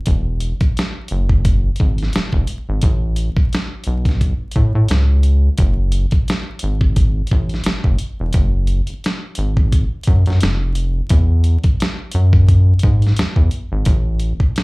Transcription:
0.06 analog synth bass E1, kick, closed hi-hat
0.40 closed hi-hat
0.61 analog synth bass F#1, kick, closed hi-hat
0.77 snare, closed hi-hat
1.08 analog synth bass F#1, closed hi-hat
1.29 kick
1.45 kick, closed hi-hat
1.76 closed hi-hat
1.80 analog synth bass G#1, kick
1.98 closed hi-hat
2.03 snare
2.13 analog synth bass E1, snare, closed hi-hat
2.33 analog synth bass E1, kick
2.47 closed hi-hat
2.69 analog synth bass G#1
2.81 analog synth bass A1, kick, closed hi-hat
3.16 closed hi-hat
3.37 analog synth bass B1, kick
3.53 snare, closed hi-hat
3.84 analog synth bass B1, closed hi-hat
4.05 kick, snare, closed hi-hat
4.21 kick, closed hi-hat
4.51 closed hi-hat
4.56 analog synth bass A2, kick
4.75 analog synth bass A2
4.88 analog synth bass C#2, snare, closed hi-hat
5.23 closed hi-hat
5.58 analog synth bass F#1, kick, closed hi-hat
5.92 closed hi-hat
6.11 analog synth bass G#1, kick, closed hi-hat
6.28 snare, closed hi-hat
6.59 closed hi-hat
6.63 analog synth bass G#1
6.81 kick
6.96 kick, closed hi-hat
7.27 closed hi-hat
7.31 analog synth bass A1, kick
7.49 closed hi-hat
7.54 snare
7.64 analog synth bass F#1, snare, closed hi-hat
7.84 analog synth bass F#1, kick
7.98 closed hi-hat
8.20 analog synth bass E1
8.33 analog synth bass F#1, kick, closed hi-hat
8.67 closed hi-hat
8.87 analog synth bass G#1, closed hi-hat
9.04 snare, closed hi-hat
9.35 analog synth bass G#1, closed hi-hat
9.57 kick
9.72 kick, closed hi-hat
10.03 closed hi-hat
10.07 analog synth bass F#2, kick
10.26 analog synth bass F#2, closed hi-hat
10.30 snare
10.41 analog synth bass F1, snare, closed hi-hat
10.75 closed hi-hat
11.09 analog synth bass E2, kick, closed hi-hat
11.44 closed hi-hat
11.64 analog synth bass F#2, kick, closed hi-hat
11.80 snare, closed hi-hat
12.12 analog synth bass F#2, closed hi-hat
12.33 kick
12.49 kick, closed hi-hat
12.79 closed hi-hat
12.83 analog synth bass G#2, kick
13.02 closed hi-hat
13.07 snare
13.17 analog synth bass E2, snare, closed hi-hat
13.36 analog synth bass E2, kick
13.51 closed hi-hat
13.72 analog synth bass G#1
13.85 analog synth bass A1, kick, closed hi-hat
14.19 closed hi-hat
14.40 analog synth bass B1, kick
14.56 snare, closed hi-hat

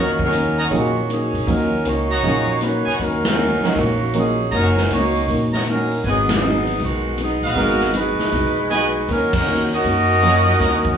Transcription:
Already playing: upright bass D#2, hollow-body jazz guitar D#3 A#3 C#4 F#4, grand piano F#3 C#4 D#4 F4 A#4, trumpet section F#4 C#5 D#5 A#5
0.00 saxophone section F#3 C#4 D#4 A#4
0.19 kick
0.24 saxophone section F#3 C#4 D#4 A#4
0.32 hollow-body jazz guitar D#3 A#3 C#4 F#4, closed hi-hat
0.57 trumpet section F#4 C#5 D#5 A#5, open hi-hat
0.70 upright bass A#1, hollow-body jazz guitar D#3 A#3 C#4 F#4, grand piano F#3 C#4 D#4 F4 G#4, kick, open hi-hat
0.77 saxophone section D#3 A#3 C#4 F#4
1.09 hollow-body jazz guitar D#3 A#3 C#4 F#4, saxophone section F#3 C#4 D#4, closed hi-hat
1.13 saxophone section G#4
1.33 upright bass A#2, open hi-hat
1.47 upright bass D#2, hollow-body jazz guitar D#3 A#3 C#4 F#4, grand piano F#3 C#4 D#4 F4 A#4, saxophone section F#3 A#4, kick, open hi-hat
1.51 saxophone section C#4 D#4
1.85 upright bass C#2, hollow-body jazz guitar D#3 A#3 C#4 F#4, saxophone section A#3 D#4 F#4 C#5, closed hi-hat
2.09 trumpet section F#4 C#5 D#5 A#5, open hi-hat
2.23 upright bass A#1, hollow-body jazz guitar D#3 A#3 C#4 F#4, grand piano F#3 C#4 D#4 F4 G#4, kick, open hi-hat
2.61 hollow-body jazz guitar D#3 A#3 C#4 F#4, saxophone section F#3 C#4 D#4 B4, closed hi-hat
2.85 trumpet section F#4 C#5 D#5 G#5, muted upright bass stroke
2.99 upright bass D#2, hollow-body jazz guitar D#3 A#3 C#4 F#4, saxophone section C#4 A#4, kick, open hi-hat
3.04 saxophone section F#3 D#4
3.25 saxophone section D#4, snare, ride
3.29 saxophone section F#3 C#4 A#4
3.38 hollow-body jazz guitar D#3 A#3 C#4 F#4
3.63 grand piano F#3 C#4 D#4 F4 A#4, muted upright bass stroke, snare, open hi-hat
3.75 upright bass A#1, hollow-body jazz guitar D#3 A#3 C#4 F#4, saxophone section D#3 A#3 C#4 F#4, kick, open hi-hat
4.13 hollow-body jazz guitar D#3 A#3 C#4 F#4, grand piano F#3 C#4 D#4 F4 A#4, closed hi-hat
4.19 saxophone section F#3 C#4 D#4 G#4
4.51 upright bass F#1, hollow-body jazz guitar D#3 A#3 C#4 F#4, trumpet section F#4 C#5 D#5 A#5, kick, open hi-hat
4.57 saxophone section F#3 C#4 D#4 A#4
4.77 snare
4.89 upright bass C#2, hollow-body jazz guitar D#3 A#3 C#4 F#4, closed hi-hat
4.93 saxophone section A#3 D#4 F#4 C#5
5.15 open hi-hat
5.28 upright bass A#1, hollow-body jazz guitar D#3 A#3 C#4 F#4, kick, open hi-hat
5.53 trumpet section F#4 C#5 D#5 A#5, snare
5.66 hollow-body jazz guitar D#3 A#3 C#4 F#4, closed hi-hat
5.70 saxophone section F#3 C#4 D#4 A#4
5.91 open hi-hat
6.04 upright bass G#1, hollow-body jazz guitar G#2 F#3 B3 D#4, trumpet section F#4 B4 D#5 G#5, kick, open hi-hat
6.08 saxophone section F#3 B3 D#4 G#4
6.29 snare, ride
6.33 saxophone section F#3 B3 D#4 G#4
6.42 hollow-body jazz guitar G#2 F#3 B3 D#4, grand piano G#3 B3 D#4 F#4 A#4
6.67 open hi-hat
6.79 upright bass B1, hollow-body jazz guitar G#2 F#3 B3 D#4, saxophone section D#3 B3 F#4, kick, open hi-hat
6.84 saxophone section G#3
7.18 hollow-body jazz guitar G#2 F#3 B3 D#4, closed hi-hat
7.22 saxophone section F#3 B3 D#4 G#4
7.42 upright bass A#1, trumpet section B3 F#4 D#5 F5, open hi-hat
7.55 upright bass G#1, hollow-body jazz guitar G#2 F#3 B3 D#4, grand piano G#3 B3 D#4 F#4 A#4, saxophone section G#3 D#4 F#4 A#4, kick, open hi-hat
7.80 snare
7.93 hollow-body jazz guitar G#2 F#3 B3 D#4, closed hi-hat
7.97 saxophone section G#3 D#4 F#4 B4
8.19 muted upright bass stroke, snare, open hi-hat
8.32 upright bass B1, hollow-body jazz guitar G#2 F#3 B3 D#4, kick, open hi-hat
8.70 hollow-body jazz guitar G#2 F#3 B3 D#4, saxophone section G#3 D#4 F#4 B4, trumpet section F#4 B4 D#5 G#5, closed hi-hat
9.08 upright bass D#2, hollow-body jazz guitar D#3 A#3 C#4 F#4, saxophone section C#4 D#4 A#4, kick, open hi-hat
9.12 saxophone section F#3
9.33 saxophone section F#3 C#4 D#4 A#4, kick, crash
9.47 hollow-body jazz guitar D#3 A#3 C#4 F#4
9.72 saxophone section C#4 F#4 A#4 D#5, open hi-hat
9.84 upright bass F#2, hollow-body jazz guitar D#3 A#3 C#4 F#4, kick, open hi-hat
10.22 hollow-body jazz guitar D#3 A#3 C#4 F#4, grand piano F#3 C#4 D#4 F4 A#4, trumpet section F#4 C#5 D#5 A#5, closed hi-hat
10.59 upright bass D#2, hollow-body jazz guitar D#3 A#3 C#4 F#4, trumpet section F#4 C#5 D#5 A#5, kick, snare, open hi-hat
10.85 kick

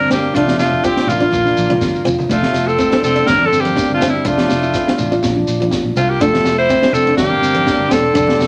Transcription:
0.08 fingered electric bass G1, steel-string acoustic guitar C4, handpan D4, alto saxophone G4, snare, low conga, shekere
0.13 tenor saxophone A#3
0.34 fingered electric bass F1, tenor saxophone A3, handpan D4, steel-string acoustic guitar D4, alto saxophone F4, kick, shekere
0.46 snare, high conga, shekere
0.58 fingered electric bass F1, alto saxophone F4, snare, shekere
0.63 tenor saxophone A3
0.72 low conga, shekere
0.83 steel-string acoustic guitar C4, tenor saxophone C4, handpan F4, alto saxophone G4, kick, shekere
0.96 steel-string acoustic guitar C4, handpan D4, snare
1.07 fingered electric bass A1, handpan E4, alto saxophone F4, low conga, shekere
1.12 tenor saxophone A#3
1.20 steel-string acoustic guitar D4, handpan F4, shekere
1.32 fingered electric bass A#1, kick, high conga, shekere
1.45 handpan D4, high conga, shekere
1.56 fingered electric bass A#1, kick, high conga, shekere
1.69 steel-string acoustic guitar D4, handpan F4, mid tom, high conga
1.81 fingered electric bass G1, kick, snare, shekere
1.95 shekere
2.04 fingered electric bass F1, steel-string acoustic guitar C4, handpan F4, floor tom, low conga, shekere
2.19 floor tom, shekere
2.29 fingered electric bass F1, handpan A3, tenor saxophone A3, steel-string acoustic guitar D4, alto saxophone F4, kick, shekere
2.42 snare, high conga
2.53 fingered electric bass F1, snare, shekere
2.68 tenor saxophone C4, alto saxophone A4, shekere
2.78 handpan C4, steel-string acoustic guitar C4, kick, shekere
2.91 steel-string acoustic guitar C4, handpan D4, snare
3.02 fingered electric bass F1, handpan C4, tenor saxophone C4, alto saxophone A4, low conga, shekere
3.16 steel-string acoustic guitar D4, handpan D4, shekere
3.27 fingered electric bass G1, tenor saxophone D4, alto saxophone A#4, kick, snare, high conga, shekere
3.41 high conga
3.46 tenor saxophone C4, alto saxophone A4
3.52 fingered electric bass G1, handpan C4, shekere
3.60 tenor saxophone A#3, alto saxophone G4
3.65 muted steel-string acoustic guitar stroke, high conga, shekere
3.76 handpan D4, kick, snare, shekere
3.89 fingered electric bass G1, handpan C4
3.94 tenor saxophone A3, alto saxophone F4
4.01 fingered electric bass G1, steel-string acoustic guitar C4, handpan D4, snare, low conga, shekere
4.09 tenor saxophone G3, alto saxophone E4
4.25 fingered electric bass F1, tenor saxophone A3, steel-string acoustic guitar D4, handpan D4, alto saxophone F4, kick, shekere
4.38 snare, high conga
4.49 fingered electric bass F1, snare, shekere
4.63 handpan E4, shekere
4.74 steel-string acoustic guitar C4, handpan F4, kick, shekere
4.87 steel-string acoustic guitar C4, handpan D4, snare
4.98 fingered electric bass A1, handpan E4, low conga, shekere
5.12 steel-string acoustic guitar D4, handpan F4, shekere
5.23 fingered electric bass A#1, kick, snare, high conga, shekere
5.35 handpan D4, high conga
5.48 fingered electric bass A#1, shekere
5.60 steel-string acoustic guitar D4, handpan F4, high conga, shekere
5.71 kick, snare, shekere
5.84 fingered electric bass A#1
5.95 fingered electric bass C2, tenor saxophone A3, steel-string acoustic guitar C4, alto saxophone F4, handpan F4, low conga, shekere
6.09 tenor saxophone A#3, alto saxophone G4
6.20 fingered electric bass F1, handpan A3, tenor saxophone C4, steel-string acoustic guitar D4, alto saxophone A4, kick, shekere
6.33 snare, high conga
6.44 fingered electric bass F1, snare, shekere
6.58 tenor saxophone E4, alto saxophone C5, shekere
6.69 handpan C4, steel-string acoustic guitar C4, kick, shekere
6.83 steel-string acoustic guitar C4, handpan D4, snare
6.93 fingered electric bass F1, tenor saxophone C4, handpan C4, alto saxophone A4, low conga, shekere
7.07 handpan D4, steel-string acoustic guitar D4
7.17 fingered electric bass G1, tenor saxophone A#3, alto saxophone G4, kick, snare, high conga, shekere
7.30 high conga
7.42 fingered electric bass G1, handpan C4, shekere
7.55 steel-string acoustic guitar D4, high conga
7.66 handpan D4, kick, snare, shekere
7.78 fingered electric bass G1, handpan C4
7.89 fingered electric bass E1, tenor saxophone C4, steel-string acoustic guitar C4, handpan D4, alto saxophone A4, snare, low conga, shekere
8.14 fingered electric bass F1, handpan D4, steel-string acoustic guitar D4, kick, shekere
8.27 snare, high conga
8.39 fingered electric bass F1, snare, shekere

